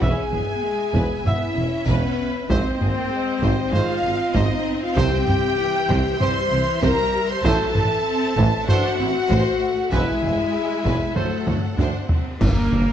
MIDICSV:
0, 0, Header, 1, 15, 480
1, 0, Start_track
1, 0, Tempo, 619195
1, 14, Time_signature, 4, 2, 24, 8
1, 10020, End_track
2, 0, Start_track
2, 0, Title_t, "Flute section"
2, 0, Program_c, 0, 73
2, 17, Note_on_c, 0, 80, 105
2, 976, Note_off_c, 0, 80, 0
2, 987, Note_on_c, 0, 76, 92
2, 1461, Note_off_c, 0, 76, 0
2, 1470, Note_on_c, 0, 71, 93
2, 1940, Note_on_c, 0, 72, 109
2, 1943, Note_off_c, 0, 71, 0
2, 2891, Note_on_c, 0, 77, 125
2, 2898, Note_off_c, 0, 72, 0
2, 3374, Note_off_c, 0, 77, 0
2, 3374, Note_on_c, 0, 75, 103
2, 3734, Note_on_c, 0, 77, 96
2, 3735, Note_off_c, 0, 75, 0
2, 3853, Note_off_c, 0, 77, 0
2, 3860, Note_on_c, 0, 79, 122
2, 4609, Note_off_c, 0, 79, 0
2, 4802, Note_on_c, 0, 84, 127
2, 5289, Note_off_c, 0, 84, 0
2, 5292, Note_on_c, 0, 82, 127
2, 5647, Note_off_c, 0, 82, 0
2, 5649, Note_on_c, 0, 84, 121
2, 5770, Note_off_c, 0, 84, 0
2, 5774, Note_on_c, 0, 81, 127
2, 6730, Note_on_c, 0, 78, 127
2, 6736, Note_off_c, 0, 81, 0
2, 7675, Note_off_c, 0, 78, 0
2, 7688, Note_on_c, 0, 76, 99
2, 8634, Note_off_c, 0, 76, 0
2, 8650, Note_on_c, 0, 69, 89
2, 9134, Note_off_c, 0, 69, 0
2, 9620, Note_on_c, 0, 70, 88
2, 10020, Note_off_c, 0, 70, 0
2, 10020, End_track
3, 0, Start_track
3, 0, Title_t, "Violin section"
3, 0, Program_c, 1, 48
3, 15, Note_on_c, 1, 80, 91
3, 972, Note_on_c, 1, 76, 88
3, 975, Note_off_c, 1, 80, 0
3, 1454, Note_off_c, 1, 76, 0
3, 1457, Note_on_c, 1, 71, 103
3, 1936, Note_off_c, 1, 71, 0
3, 1939, Note_on_c, 1, 72, 90
3, 2878, Note_off_c, 1, 72, 0
3, 2889, Note_on_c, 1, 77, 114
3, 3373, Note_off_c, 1, 77, 0
3, 3374, Note_on_c, 1, 75, 97
3, 3730, Note_on_c, 1, 77, 99
3, 3735, Note_off_c, 1, 75, 0
3, 3851, Note_off_c, 1, 77, 0
3, 3854, Note_on_c, 1, 79, 126
3, 4814, Note_on_c, 1, 84, 116
3, 4815, Note_off_c, 1, 79, 0
3, 5295, Note_off_c, 1, 84, 0
3, 5297, Note_on_c, 1, 82, 125
3, 5654, Note_on_c, 1, 84, 109
3, 5657, Note_off_c, 1, 82, 0
3, 5772, Note_on_c, 1, 81, 114
3, 5775, Note_off_c, 1, 84, 0
3, 6731, Note_on_c, 1, 78, 127
3, 6735, Note_off_c, 1, 81, 0
3, 7675, Note_off_c, 1, 78, 0
3, 7693, Note_on_c, 1, 76, 88
3, 8637, Note_off_c, 1, 76, 0
3, 8661, Note_on_c, 1, 69, 82
3, 9130, Note_off_c, 1, 69, 0
3, 9624, Note_on_c, 1, 70, 80
3, 10020, Note_off_c, 1, 70, 0
3, 10020, End_track
4, 0, Start_track
4, 0, Title_t, "Trumpet"
4, 0, Program_c, 2, 56
4, 14, Note_on_c, 2, 76, 70
4, 182, Note_off_c, 2, 76, 0
4, 978, Note_on_c, 2, 76, 66
4, 1144, Note_off_c, 2, 76, 0
4, 1937, Note_on_c, 2, 72, 79
4, 2104, Note_off_c, 2, 72, 0
4, 2897, Note_on_c, 2, 72, 85
4, 3064, Note_off_c, 2, 72, 0
4, 3856, Note_on_c, 2, 72, 93
4, 4024, Note_off_c, 2, 72, 0
4, 4814, Note_on_c, 2, 72, 87
4, 4982, Note_off_c, 2, 72, 0
4, 5769, Note_on_c, 2, 72, 91
4, 5939, Note_off_c, 2, 72, 0
4, 6730, Note_on_c, 2, 72, 90
4, 6900, Note_off_c, 2, 72, 0
4, 7691, Note_on_c, 2, 71, 78
4, 7861, Note_off_c, 2, 71, 0
4, 8650, Note_on_c, 2, 72, 74
4, 8820, Note_off_c, 2, 72, 0
4, 9622, Note_on_c, 2, 58, 91
4, 10020, Note_off_c, 2, 58, 0
4, 10020, End_track
5, 0, Start_track
5, 0, Title_t, "Violin section"
5, 0, Program_c, 3, 48
5, 9, Note_on_c, 3, 76, 70
5, 11, Note_on_c, 3, 71, 72
5, 236, Note_off_c, 3, 71, 0
5, 253, Note_on_c, 3, 68, 62
5, 315, Note_off_c, 3, 68, 0
5, 726, Note_on_c, 3, 71, 74
5, 953, Note_off_c, 3, 71, 0
5, 963, Note_on_c, 3, 68, 69
5, 1025, Note_off_c, 3, 68, 0
5, 1202, Note_on_c, 3, 64, 70
5, 1265, Note_off_c, 3, 64, 0
5, 1448, Note_on_c, 3, 71, 99
5, 1675, Note_off_c, 3, 71, 0
5, 1902, Note_off_c, 3, 76, 0
5, 1931, Note_on_c, 3, 75, 81
5, 1932, Note_on_c, 3, 72, 91
5, 2157, Note_off_c, 3, 72, 0
5, 2173, Note_on_c, 3, 68, 62
5, 2235, Note_off_c, 3, 68, 0
5, 2646, Note_on_c, 3, 72, 88
5, 2874, Note_off_c, 3, 72, 0
5, 2879, Note_on_c, 3, 68, 64
5, 2941, Note_off_c, 3, 68, 0
5, 3131, Note_on_c, 3, 63, 74
5, 3193, Note_off_c, 3, 63, 0
5, 3362, Note_on_c, 3, 72, 94
5, 3592, Note_off_c, 3, 72, 0
5, 3823, Note_off_c, 3, 75, 0
5, 3841, Note_on_c, 3, 76, 88
5, 3845, Note_on_c, 3, 72, 90
5, 4073, Note_off_c, 3, 72, 0
5, 4089, Note_on_c, 3, 67, 75
5, 4151, Note_off_c, 3, 67, 0
5, 4572, Note_on_c, 3, 72, 89
5, 4797, Note_off_c, 3, 72, 0
5, 4803, Note_on_c, 3, 67, 85
5, 4865, Note_off_c, 3, 67, 0
5, 5040, Note_on_c, 3, 64, 85
5, 5102, Note_off_c, 3, 64, 0
5, 5278, Note_on_c, 3, 72, 107
5, 5510, Note_off_c, 3, 72, 0
5, 5769, Note_on_c, 3, 72, 113
5, 5996, Note_off_c, 3, 72, 0
5, 6016, Note_on_c, 3, 69, 76
5, 6078, Note_off_c, 3, 69, 0
5, 6495, Note_on_c, 3, 72, 88
5, 6719, Note_off_c, 3, 72, 0
5, 6735, Note_on_c, 3, 69, 90
5, 6797, Note_off_c, 3, 69, 0
5, 6969, Note_on_c, 3, 64, 87
5, 7031, Note_off_c, 3, 64, 0
5, 7210, Note_on_c, 3, 72, 126
5, 7436, Note_off_c, 3, 72, 0
5, 7659, Note_off_c, 3, 76, 0
5, 7691, Note_on_c, 3, 80, 82
5, 7692, Note_on_c, 3, 71, 91
5, 7918, Note_off_c, 3, 71, 0
5, 7929, Note_on_c, 3, 68, 62
5, 7991, Note_off_c, 3, 68, 0
5, 8415, Note_on_c, 3, 71, 82
5, 8636, Note_off_c, 3, 80, 0
5, 8640, Note_off_c, 3, 71, 0
5, 8653, Note_on_c, 3, 78, 75
5, 8654, Note_on_c, 3, 69, 64
5, 8716, Note_off_c, 3, 69, 0
5, 8897, Note_on_c, 3, 66, 75
5, 8959, Note_off_c, 3, 66, 0
5, 9137, Note_on_c, 3, 72, 91
5, 9361, Note_off_c, 3, 72, 0
5, 9445, Note_off_c, 3, 78, 0
5, 9624, Note_on_c, 3, 70, 85
5, 10020, Note_off_c, 3, 70, 0
5, 10020, End_track
6, 0, Start_track
6, 0, Title_t, "French horn section"
6, 0, Program_c, 4, 60
6, 15, Note_on_c, 4, 68, 109
6, 975, Note_off_c, 4, 68, 0
6, 975, Note_on_c, 4, 64, 106
6, 1452, Note_on_c, 4, 59, 112
6, 1455, Note_off_c, 4, 64, 0
6, 1801, Note_off_c, 4, 59, 0
6, 1933, Note_on_c, 4, 60, 127
6, 2875, Note_off_c, 4, 60, 0
6, 2889, Note_on_c, 4, 65, 124
6, 3372, Note_on_c, 4, 63, 102
6, 3373, Note_off_c, 4, 65, 0
6, 3733, Note_on_c, 4, 65, 109
6, 3734, Note_off_c, 4, 63, 0
6, 3852, Note_on_c, 4, 67, 127
6, 3855, Note_off_c, 4, 65, 0
6, 4795, Note_off_c, 4, 67, 0
6, 4814, Note_on_c, 4, 72, 127
6, 5286, Note_off_c, 4, 72, 0
6, 5288, Note_on_c, 4, 70, 127
6, 5645, Note_off_c, 4, 70, 0
6, 5656, Note_on_c, 4, 72, 127
6, 5760, Note_on_c, 4, 69, 127
6, 5777, Note_off_c, 4, 72, 0
6, 6725, Note_on_c, 4, 66, 127
6, 6729, Note_off_c, 4, 69, 0
6, 7672, Note_off_c, 4, 66, 0
6, 7689, Note_on_c, 4, 64, 121
6, 8649, Note_on_c, 4, 57, 101
6, 8654, Note_off_c, 4, 64, 0
6, 9134, Note_off_c, 4, 57, 0
6, 9615, Note_on_c, 4, 62, 86
6, 9616, Note_on_c, 4, 58, 79
6, 10020, Note_off_c, 4, 58, 0
6, 10020, Note_off_c, 4, 62, 0
6, 10020, End_track
7, 0, Start_track
7, 0, Title_t, "Viola section"
7, 0, Program_c, 5, 48
7, 15, Note_on_c, 5, 61, 78
7, 250, Note_on_c, 5, 59, 78
7, 255, Note_off_c, 5, 61, 0
7, 487, Note_off_c, 5, 59, 0
7, 493, Note_on_c, 5, 56, 88
7, 729, Note_on_c, 5, 59, 75
7, 734, Note_off_c, 5, 56, 0
7, 963, Note_off_c, 5, 59, 0
7, 972, Note_on_c, 5, 59, 83
7, 1208, Note_on_c, 5, 61, 88
7, 1214, Note_off_c, 5, 59, 0
7, 1929, Note_on_c, 5, 60, 85
7, 1932, Note_off_c, 5, 61, 0
7, 2168, Note_off_c, 5, 60, 0
7, 2169, Note_on_c, 5, 58, 90
7, 2409, Note_on_c, 5, 56, 95
7, 2413, Note_off_c, 5, 58, 0
7, 2653, Note_off_c, 5, 56, 0
7, 2653, Note_on_c, 5, 55, 81
7, 2885, Note_on_c, 5, 56, 88
7, 2894, Note_off_c, 5, 55, 0
7, 3126, Note_on_c, 5, 60, 105
7, 3130, Note_off_c, 5, 56, 0
7, 4307, Note_off_c, 5, 60, 0
7, 4322, Note_on_c, 5, 52, 97
7, 4809, Note_off_c, 5, 52, 0
7, 4810, Note_on_c, 5, 55, 104
7, 5048, Note_off_c, 5, 55, 0
7, 5048, Note_on_c, 5, 52, 102
7, 5293, Note_off_c, 5, 52, 0
7, 5293, Note_on_c, 5, 55, 99
7, 5770, Note_on_c, 5, 54, 104
7, 5775, Note_off_c, 5, 55, 0
7, 6003, Note_on_c, 5, 52, 102
7, 6009, Note_off_c, 5, 54, 0
7, 6245, Note_on_c, 5, 60, 108
7, 6250, Note_off_c, 5, 52, 0
7, 6482, Note_on_c, 5, 57, 95
7, 6486, Note_off_c, 5, 60, 0
7, 6725, Note_on_c, 5, 62, 120
7, 6730, Note_off_c, 5, 57, 0
7, 6966, Note_off_c, 5, 62, 0
7, 6968, Note_on_c, 5, 60, 102
7, 7210, Note_on_c, 5, 57, 92
7, 7213, Note_off_c, 5, 60, 0
7, 7684, Note_off_c, 5, 57, 0
7, 7685, Note_on_c, 5, 56, 103
7, 8646, Note_on_c, 5, 54, 82
7, 8652, Note_off_c, 5, 56, 0
7, 9084, Note_off_c, 5, 54, 0
7, 9133, Note_on_c, 5, 62, 84
7, 9359, Note_off_c, 5, 62, 0
7, 9367, Note_on_c, 5, 60, 75
7, 9608, Note_off_c, 5, 60, 0
7, 9612, Note_on_c, 5, 58, 68
7, 9614, Note_on_c, 5, 62, 69
7, 9674, Note_off_c, 5, 58, 0
7, 9676, Note_off_c, 5, 62, 0
7, 9850, Note_on_c, 5, 58, 69
7, 9851, Note_on_c, 5, 62, 65
7, 9912, Note_off_c, 5, 58, 0
7, 9913, Note_off_c, 5, 62, 0
7, 10020, End_track
8, 0, Start_track
8, 0, Title_t, "Trombone section"
8, 0, Program_c, 6, 61
8, 1, Note_on_c, 6, 59, 64
8, 7, Note_on_c, 6, 52, 74
8, 173, Note_off_c, 6, 59, 0
8, 177, Note_off_c, 6, 52, 0
8, 971, Note_on_c, 6, 52, 76
8, 972, Note_on_c, 6, 59, 72
8, 1140, Note_off_c, 6, 52, 0
8, 1140, Note_off_c, 6, 59, 0
8, 1928, Note_on_c, 6, 51, 78
8, 1931, Note_on_c, 6, 60, 85
8, 2098, Note_off_c, 6, 51, 0
8, 2100, Note_off_c, 6, 60, 0
8, 2882, Note_on_c, 6, 60, 82
8, 2888, Note_on_c, 6, 51, 85
8, 3054, Note_off_c, 6, 60, 0
8, 3058, Note_off_c, 6, 51, 0
8, 3855, Note_on_c, 6, 60, 87
8, 3857, Note_on_c, 6, 52, 91
8, 4023, Note_off_c, 6, 60, 0
8, 4024, Note_off_c, 6, 52, 0
8, 4800, Note_on_c, 6, 52, 99
8, 4802, Note_on_c, 6, 60, 87
8, 4973, Note_off_c, 6, 52, 0
8, 4974, Note_off_c, 6, 60, 0
8, 5772, Note_on_c, 6, 52, 97
8, 5776, Note_on_c, 6, 57, 103
8, 5941, Note_off_c, 6, 52, 0
8, 5944, Note_off_c, 6, 57, 0
8, 6719, Note_on_c, 6, 52, 90
8, 6719, Note_on_c, 6, 57, 96
8, 6892, Note_off_c, 6, 52, 0
8, 6893, Note_off_c, 6, 57, 0
8, 7684, Note_on_c, 6, 52, 81
8, 7686, Note_on_c, 6, 56, 87
8, 7856, Note_off_c, 6, 52, 0
8, 7857, Note_off_c, 6, 56, 0
8, 8643, Note_on_c, 6, 54, 74
8, 8650, Note_on_c, 6, 57, 79
8, 8816, Note_off_c, 6, 54, 0
8, 8820, Note_off_c, 6, 57, 0
8, 9625, Note_on_c, 6, 50, 86
8, 9626, Note_on_c, 6, 55, 83
8, 10020, Note_off_c, 6, 50, 0
8, 10020, Note_off_c, 6, 55, 0
8, 10020, End_track
9, 0, Start_track
9, 0, Title_t, "Timpani"
9, 0, Program_c, 7, 47
9, 3855, Note_on_c, 7, 48, 105
9, 4545, Note_off_c, 7, 48, 0
9, 9624, Note_on_c, 7, 43, 95
9, 10020, Note_off_c, 7, 43, 0
9, 10020, End_track
10, 0, Start_track
10, 0, Title_t, "Cello section"
10, 0, Program_c, 8, 48
10, 18, Note_on_c, 8, 40, 81
10, 80, Note_off_c, 8, 40, 0
10, 254, Note_on_c, 8, 40, 55
10, 316, Note_off_c, 8, 40, 0
10, 735, Note_on_c, 8, 40, 89
10, 797, Note_off_c, 8, 40, 0
10, 977, Note_on_c, 8, 40, 65
10, 1039, Note_off_c, 8, 40, 0
10, 1211, Note_on_c, 8, 40, 69
10, 1273, Note_off_c, 8, 40, 0
10, 1463, Note_on_c, 8, 40, 95
10, 1525, Note_off_c, 8, 40, 0
10, 1937, Note_on_c, 8, 44, 93
10, 1999, Note_off_c, 8, 44, 0
10, 2175, Note_on_c, 8, 44, 62
10, 2237, Note_off_c, 8, 44, 0
10, 2655, Note_on_c, 8, 44, 112
10, 2717, Note_off_c, 8, 44, 0
10, 2892, Note_on_c, 8, 44, 74
10, 2954, Note_off_c, 8, 44, 0
10, 3138, Note_on_c, 8, 44, 67
10, 3200, Note_off_c, 8, 44, 0
10, 3373, Note_on_c, 8, 44, 117
10, 3435, Note_off_c, 8, 44, 0
10, 3852, Note_on_c, 8, 48, 104
10, 3914, Note_off_c, 8, 48, 0
10, 4094, Note_on_c, 8, 48, 72
10, 4156, Note_off_c, 8, 48, 0
10, 4572, Note_on_c, 8, 48, 127
10, 4634, Note_off_c, 8, 48, 0
10, 4806, Note_on_c, 8, 48, 83
10, 4868, Note_off_c, 8, 48, 0
10, 5047, Note_on_c, 8, 48, 80
10, 5109, Note_off_c, 8, 48, 0
10, 5286, Note_on_c, 8, 48, 122
10, 5348, Note_off_c, 8, 48, 0
10, 5771, Note_on_c, 8, 45, 109
10, 5833, Note_off_c, 8, 45, 0
10, 6013, Note_on_c, 8, 45, 86
10, 6075, Note_off_c, 8, 45, 0
10, 6496, Note_on_c, 8, 45, 127
10, 6558, Note_off_c, 8, 45, 0
10, 6734, Note_on_c, 8, 45, 79
10, 6796, Note_off_c, 8, 45, 0
10, 6969, Note_on_c, 8, 45, 75
10, 7031, Note_off_c, 8, 45, 0
10, 7216, Note_on_c, 8, 45, 115
10, 7278, Note_off_c, 8, 45, 0
10, 7701, Note_on_c, 8, 40, 104
10, 7763, Note_off_c, 8, 40, 0
10, 7938, Note_on_c, 8, 40, 72
10, 8000, Note_off_c, 8, 40, 0
10, 8412, Note_on_c, 8, 40, 113
10, 8474, Note_off_c, 8, 40, 0
10, 8651, Note_on_c, 8, 38, 66
10, 8713, Note_off_c, 8, 38, 0
10, 8900, Note_on_c, 8, 38, 61
10, 8962, Note_off_c, 8, 38, 0
10, 9131, Note_on_c, 8, 38, 98
10, 9193, Note_off_c, 8, 38, 0
10, 9618, Note_on_c, 8, 58, 103
10, 10020, Note_off_c, 8, 58, 0
10, 10020, End_track
11, 0, Start_track
11, 0, Title_t, "Double bass section"
11, 0, Program_c, 10, 48
11, 14, Note_on_c, 10, 28, 76
11, 76, Note_off_c, 10, 28, 0
11, 252, Note_on_c, 10, 28, 56
11, 314, Note_off_c, 10, 28, 0
11, 731, Note_on_c, 10, 28, 96
11, 793, Note_off_c, 10, 28, 0
11, 970, Note_on_c, 10, 28, 65
11, 1032, Note_off_c, 10, 28, 0
11, 1214, Note_on_c, 10, 28, 64
11, 1276, Note_off_c, 10, 28, 0
11, 1454, Note_on_c, 10, 28, 92
11, 1516, Note_off_c, 10, 28, 0
11, 1936, Note_on_c, 10, 32, 86
11, 1998, Note_off_c, 10, 32, 0
11, 2170, Note_on_c, 10, 32, 70
11, 2232, Note_off_c, 10, 32, 0
11, 2650, Note_on_c, 10, 32, 106
11, 2712, Note_off_c, 10, 32, 0
11, 2897, Note_on_c, 10, 32, 72
11, 2959, Note_off_c, 10, 32, 0
11, 3129, Note_on_c, 10, 32, 73
11, 3191, Note_off_c, 10, 32, 0
11, 3373, Note_on_c, 10, 32, 99
11, 3435, Note_off_c, 10, 32, 0
11, 3852, Note_on_c, 10, 36, 101
11, 3914, Note_off_c, 10, 36, 0
11, 4089, Note_on_c, 10, 36, 76
11, 4151, Note_off_c, 10, 36, 0
11, 4568, Note_on_c, 10, 36, 118
11, 4630, Note_off_c, 10, 36, 0
11, 4809, Note_on_c, 10, 36, 74
11, 4871, Note_off_c, 10, 36, 0
11, 5047, Note_on_c, 10, 36, 73
11, 5109, Note_off_c, 10, 36, 0
11, 5288, Note_on_c, 10, 36, 107
11, 5350, Note_off_c, 10, 36, 0
11, 5765, Note_on_c, 10, 33, 101
11, 5827, Note_off_c, 10, 33, 0
11, 6008, Note_on_c, 10, 33, 86
11, 6070, Note_off_c, 10, 33, 0
11, 6488, Note_on_c, 10, 33, 115
11, 6550, Note_off_c, 10, 33, 0
11, 6730, Note_on_c, 10, 33, 79
11, 6792, Note_off_c, 10, 33, 0
11, 6973, Note_on_c, 10, 33, 72
11, 7035, Note_off_c, 10, 33, 0
11, 7208, Note_on_c, 10, 33, 115
11, 7270, Note_off_c, 10, 33, 0
11, 7694, Note_on_c, 10, 28, 100
11, 7756, Note_off_c, 10, 28, 0
11, 7935, Note_on_c, 10, 28, 72
11, 7997, Note_off_c, 10, 28, 0
11, 8412, Note_on_c, 10, 28, 97
11, 8474, Note_off_c, 10, 28, 0
11, 8649, Note_on_c, 10, 38, 69
11, 8711, Note_off_c, 10, 38, 0
11, 8895, Note_on_c, 10, 38, 61
11, 8957, Note_off_c, 10, 38, 0
11, 9133, Note_on_c, 10, 38, 96
11, 9195, Note_off_c, 10, 38, 0
11, 9617, Note_on_c, 10, 43, 69
11, 9679, Note_off_c, 10, 43, 0
11, 9859, Note_on_c, 10, 43, 68
11, 9921, Note_off_c, 10, 43, 0
11, 10020, End_track
12, 0, Start_track
12, 0, Title_t, "Tuba"
12, 0, Program_c, 11, 58
12, 12, Note_on_c, 11, 28, 87
12, 109, Note_off_c, 11, 28, 0
12, 256, Note_on_c, 11, 28, 59
12, 352, Note_off_c, 11, 28, 0
12, 727, Note_on_c, 11, 28, 89
12, 825, Note_off_c, 11, 28, 0
12, 969, Note_on_c, 11, 28, 61
12, 1066, Note_off_c, 11, 28, 0
12, 1217, Note_on_c, 11, 28, 64
12, 1313, Note_off_c, 11, 28, 0
12, 1458, Note_on_c, 11, 28, 99
12, 1554, Note_off_c, 11, 28, 0
12, 1935, Note_on_c, 11, 32, 100
12, 2031, Note_off_c, 11, 32, 0
12, 2172, Note_on_c, 11, 32, 73
12, 2269, Note_off_c, 11, 32, 0
12, 2651, Note_on_c, 11, 32, 107
12, 2748, Note_off_c, 11, 32, 0
12, 2894, Note_on_c, 11, 32, 73
12, 2990, Note_off_c, 11, 32, 0
12, 3130, Note_on_c, 11, 32, 71
12, 3228, Note_off_c, 11, 32, 0
12, 3365, Note_on_c, 11, 32, 104
12, 3464, Note_off_c, 11, 32, 0
12, 3854, Note_on_c, 11, 36, 112
12, 3950, Note_off_c, 11, 36, 0
12, 4085, Note_on_c, 11, 36, 77
12, 4183, Note_off_c, 11, 36, 0
12, 4567, Note_on_c, 11, 36, 118
12, 4665, Note_off_c, 11, 36, 0
12, 4810, Note_on_c, 11, 36, 73
12, 4908, Note_off_c, 11, 36, 0
12, 5053, Note_on_c, 11, 36, 82
12, 5150, Note_off_c, 11, 36, 0
12, 5292, Note_on_c, 11, 36, 102
12, 5389, Note_off_c, 11, 36, 0
12, 5773, Note_on_c, 11, 33, 116
12, 5869, Note_off_c, 11, 33, 0
12, 6019, Note_on_c, 11, 33, 76
12, 6114, Note_off_c, 11, 33, 0
12, 6489, Note_on_c, 11, 33, 120
12, 6587, Note_off_c, 11, 33, 0
12, 6732, Note_on_c, 11, 33, 74
12, 6829, Note_off_c, 11, 33, 0
12, 6971, Note_on_c, 11, 33, 78
12, 7068, Note_off_c, 11, 33, 0
12, 7215, Note_on_c, 11, 33, 111
12, 7311, Note_off_c, 11, 33, 0
12, 7691, Note_on_c, 11, 28, 113
12, 7789, Note_off_c, 11, 28, 0
12, 7938, Note_on_c, 11, 28, 76
12, 8034, Note_off_c, 11, 28, 0
12, 8410, Note_on_c, 11, 28, 96
12, 8508, Note_off_c, 11, 28, 0
12, 8659, Note_on_c, 11, 38, 67
12, 8755, Note_off_c, 11, 38, 0
12, 8901, Note_on_c, 11, 38, 63
12, 8997, Note_off_c, 11, 38, 0
12, 9135, Note_on_c, 11, 38, 97
12, 9232, Note_off_c, 11, 38, 0
12, 9627, Note_on_c, 11, 31, 75
12, 9721, Note_off_c, 11, 31, 0
12, 9864, Note_on_c, 11, 31, 74
12, 9959, Note_off_c, 11, 31, 0
12, 10020, End_track
13, 0, Start_track
13, 0, Title_t, "Impact"
13, 0, Program_c, 12, 103
13, 9623, Note_on_c, 12, 60, 75
13, 10020, Note_off_c, 12, 60, 0
13, 10020, End_track
14, 0, Start_track
14, 0, Title_t, "Taiko and cinematic ensemble drums"
14, 13, Note_on_c, 9, 41, 92
14, 90, Note_off_c, 9, 41, 0
14, 256, Note_on_c, 9, 45, 57
14, 334, Note_off_c, 9, 45, 0
14, 736, Note_on_c, 9, 41, 79
14, 813, Note_off_c, 9, 41, 0
14, 977, Note_on_c, 9, 45, 68
14, 1055, Note_off_c, 9, 45, 0
14, 1458, Note_on_c, 9, 41, 78
14, 1536, Note_off_c, 9, 41, 0
14, 1937, Note_on_c, 9, 41, 109
14, 2014, Note_off_c, 9, 41, 0
14, 2179, Note_on_c, 9, 45, 57
14, 2256, Note_off_c, 9, 45, 0
14, 2651, Note_on_c, 9, 41, 75
14, 2728, Note_off_c, 9, 41, 0
14, 2890, Note_on_c, 9, 45, 76
14, 2968, Note_off_c, 9, 45, 0
14, 3367, Note_on_c, 9, 41, 83
14, 3445, Note_off_c, 9, 41, 0
14, 3852, Note_on_c, 9, 41, 110
14, 3930, Note_off_c, 9, 41, 0
14, 4091, Note_on_c, 9, 45, 60
14, 4168, Note_off_c, 9, 45, 0
14, 4573, Note_on_c, 9, 41, 85
14, 4651, Note_off_c, 9, 41, 0
14, 4815, Note_on_c, 9, 45, 72
14, 4893, Note_off_c, 9, 45, 0
14, 5292, Note_on_c, 9, 41, 92
14, 5370, Note_off_c, 9, 41, 0
14, 5773, Note_on_c, 9, 41, 119
14, 5851, Note_off_c, 9, 41, 0
14, 6011, Note_on_c, 9, 45, 67
14, 6089, Note_off_c, 9, 45, 0
14, 6489, Note_on_c, 9, 41, 85
14, 6567, Note_off_c, 9, 41, 0
14, 6733, Note_on_c, 9, 45, 74
14, 6811, Note_off_c, 9, 45, 0
14, 7212, Note_on_c, 9, 41, 86
14, 7289, Note_off_c, 9, 41, 0
14, 7691, Note_on_c, 9, 41, 104
14, 7768, Note_off_c, 9, 41, 0
14, 7933, Note_on_c, 9, 45, 58
14, 8010, Note_off_c, 9, 45, 0
14, 8412, Note_on_c, 9, 41, 83
14, 8489, Note_off_c, 9, 41, 0
14, 8653, Note_on_c, 9, 45, 77
14, 8731, Note_off_c, 9, 45, 0
14, 8891, Note_on_c, 9, 45, 97
14, 8969, Note_off_c, 9, 45, 0
14, 9136, Note_on_c, 9, 45, 94
14, 9213, Note_off_c, 9, 45, 0
14, 9373, Note_on_c, 9, 43, 98
14, 9451, Note_off_c, 9, 43, 0
14, 9619, Note_on_c, 9, 41, 110
14, 9697, Note_off_c, 9, 41, 0
14, 9862, Note_on_c, 9, 47, 55
14, 9940, Note_off_c, 9, 47, 0
14, 10020, End_track
15, 0, Start_track
15, 0, Title_t, "Drums"
15, 9620, Note_on_c, 9, 35, 90
15, 9620, Note_on_c, 9, 49, 76
15, 9697, Note_off_c, 9, 35, 0
15, 9697, Note_off_c, 9, 49, 0
15, 10020, End_track
0, 0, End_of_file